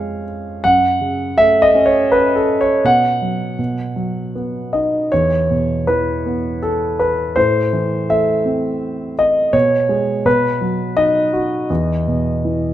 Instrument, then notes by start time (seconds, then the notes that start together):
grand piano
Already playing: F2 C#3 F3 G#3 C#5 F5
0.64 F#2 F#5
1.01 C#3
1.37 A3 E5
1.62 D#5
1.75 C#4
1.86 C#5
2.12 B4
2.36 A4
2.61 C#5
2.84 B2 F#5
3.22 F#3
3.59 B2
3.96 F#3
4.35 B3
4.73 D#4 D#5
5.12 E2 C#5
5.51 B2
5.87 E3 B4
6.26 B3
6.63 A4
6.99 B4
7.36 A2 C5
7.73 E3
8.09 A3 E5
8.45 C4
9.19 D#5
9.53 B2 C#5
9.89 G#3
10.25 B2 B4
10.61 F#3
10.97 D#4 D#5
11.33 F#4
11.70 E2
12.08 B2
12.45 E3